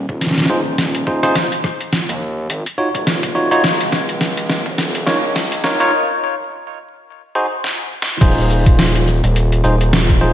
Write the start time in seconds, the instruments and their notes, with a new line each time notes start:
0.09 analog synth bass D#1, kick
0.21 snare, closed hi-hat
0.27 snare
0.31 snare
0.38 snare, closed hi-hat
0.40 snare
0.46 snare
0.50 analog synth bass D#1, tine electric piano D#4 F4 G#4 C5
0.78 snare, closed hi-hat
0.95 closed hi-hat
1.07 tine electric piano D#4 F4 G#4 C5, kick
1.23 tine electric piano D#4 F4 G#4 C5, cross-stick, closed hi-hat
1.35 analog synth bass D#1, kick, snare, closed hi-hat
1.52 closed hi-hat
1.64 kick, cross-stick
1.81 closed hi-hat
1.93 snare, closed hi-hat
2.09 analog synth bass D#2, closed hi-hat
2.50 analog synth bass G#1, closed hi-hat
2.66 closed hi-hat
2.78 tine electric piano D#4 F4 F#4 C#5
2.95 analog synth bass D#1, kick, closed hi-hat
3.07 snare, closed hi-hat
3.23 kick, closed hi-hat
3.35 tine electric piano D#4 F4 F#4 C#5
3.51 tine electric piano D#4 F4 F#4 C#5, closed hi-hat
3.64 analog synth bass D#1, kick, snare, closed hi-hat
3.80 analog synth bass C#2, closed hi-hat
3.92 kick, snare
4.09 closed hi-hat
4.21 snare, closed hi-hat
4.37 closed hi-hat
4.50 snare
4.66 analog synth bass D#1, kick
4.78 snare, closed hi-hat
4.95 closed hi-hat
5.06 analog synth bass C#2, tine electric piano D#4 F4 A#4 C#5, snare
5.36 snare, closed hi-hat
5.52 closed hi-hat
5.64 tine electric piano D#4 F4 A#4 C#5, kick, snare
5.80 tine electric piano D#4 F4 A#4 C#5, closed hi-hat
7.35 tine electric piano D#4 F#4 G#4 C5
7.64 snare
8.02 snare
8.21 analog synth bass D#1, tine electric piano D#4 F4 G#4 C5, kick, closed hi-hat, crash, shaker
8.31 shaker
8.38 analog synth bass D#1, shaker
8.41 shaker
8.50 shaker
8.66 kick, closed hi-hat, shaker
8.79 snare, closed hi-hat, shaker
8.95 closed hi-hat, shaker
8.98 shaker
9.03 shaker
9.07 shaker
9.13 shaker
9.17 shaker
9.24 analog synth bass D#1, closed hi-hat
9.36 closed hi-hat, shaker
9.52 closed hi-hat, shaker
9.64 analog synth bass D#1, tine electric piano D#4 F4 G#4 C5, shaker
9.81 closed hi-hat, shaker
9.93 snare, closed hi-hat, shaker
10.09 kick, closed hi-hat, shaker
10.21 tine electric piano D#4 F4 G#4 C5